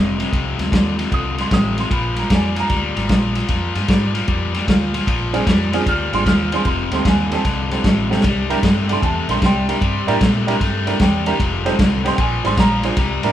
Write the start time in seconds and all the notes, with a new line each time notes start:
Already playing: F1 F2 C3 D#5
0.19 F2 C3, snare, ride
0.32 C2 F2 C3, kick, ride
0.58 D2 F2 C3, snare, ride
0.72 D#2 F2 D3, kick, snare, ride
0.98 F2 C3, snare, ride
1.11 C2 F2 D3 D#6, kick, ride
1.38 F2 D3 C6, snare, ride
1.51 A1 F2 C3 D#6, kick, snare, ride
1.77 F2 C3 C6, snare, ride
1.90 A#1 A#2 F3 B5, kick, ride
2.16 A#2 F3 A#5, snare, ride
2.30 F2 A#2 G3 G#5, kick, snare, ride
2.56 A#2 F3 A#5, snare, ride
2.69 D2 A#2 G3, kick, snare, ride
2.95 G#1 A#2 G3, snare, ride
3.09 A#1 A#2 F3, kick, snare, ride
3.35 A#2 F3, snare, ride
3.48 F2 A#2 F3, kick, snare, ride
3.75 G2 A#2 F3, snare, ride
3.88 G#2 A#2 G3, kick, snare, ride
4.14 A#2 F3, snare, ride
4.27 F2 A#2 G3, kick, ride
4.54 A#2 G3, snare, ride
4.67 D2 A#2 F3, kick, snare, ride
4.94 A#2 F3, snare, ride
5.07 A#1 A#2 F3, kick, ride
5.33 A#2 F3 C4 D4 F4 G#4, snare, ride
5.46 F2 A#2 G3, kick, snare, ride
5.72 A#2 F3 C4 D4 F4 G#4, snare, ride
5.86 D2 A#2 G3 F6, kick, ride
6.12 G#1 A#2 G3 C4 D4 F4 G#4 C6, snare, ride
6.25 D#2 A#2 F3 F6, kick, snare, ride
6.52 A#2 F3 C4 D4 F4 G#4 C6, snare, ride
6.65 F1 F2 C3 C6, kick, ride
6.91 D2 F2 C3 C4 D#4 G4 A4 C6, snare, ride
7.05 D#2 F2 D3 G#5, kick, snare, ride
7.31 F2 C3 C4 D#4 G4 A4 A5, snare, ride
7.44 C2 F2 D3, kick, snare, ride
7.71 F2 D3 C4 D#4 G4 A4, snare, ride
7.84 A1 F2 C3, kick, snare, ride
8.10 F2 C3 C4 D#4 G4 A4, snare
8.21 C2 C3, kick, snare, ride
8.25 G3
8.50 C3 G3 D4 E4 G4 A#4, snare, ride
8.63 G2 C3 A3, kick, snare, ride
8.89 C3 G3 D4 E4 G4 A4 C6, snare, ride
9.00 E2 C3 A3 G#5, kick, ride
9.04 A5
9.29 A#1 C3 A3 D4 E4 G4 A#4 C6, snare, ride
9.42 C2 C3 G3 G5 C6, kick, snare, ride
9.68 C3 G3 D4 E4 G4 A#4, snare, ride
9.81 G2 C3 G3, kick, ride
10.07 A2 C3 G3 D4 E4 G4 A#4, snare, ride
10.21 A#2 C3 A3, kick, snare, ride
10.47 C3 G3 D4 E4 G4 A#4, snare, ride
10.60 G2 C3 A3, kick, snare, ride
10.87 C3 A3 D4 E4 G4 A#4 E5, snare, ride
11.00 E2 C3 G3 G5, kick, snare, ride
11.26 C3 G3 D4 E4 G4 A#4 A#5, snare, ride
11.39 F1 F2 C3, kick, ride
11.65 F2 C3 D#4 G4 A4 C5, snare, ride
11.79 C2 F2 D3, kick, snare, ride
12.05 F2 C3 D#4 G4 A4 C5 C6, snare, ride
12.15 A#1 A#2 G5, kick, ride
12.19 F3 G#5
12.44 G#1 A#2 G3 D4 F4 G#4 C5 C6, snare, ride
12.57 A#1 A#2 F3 A#5, kick, snare, ride
12.83 A#2 F3 D4 F4 G#4 C5, snare, ride
12.97 C2 C3 G3, kick, snare, ride
13.23 A2 C3 G3 D4 E4 G4 A#4, snare, ride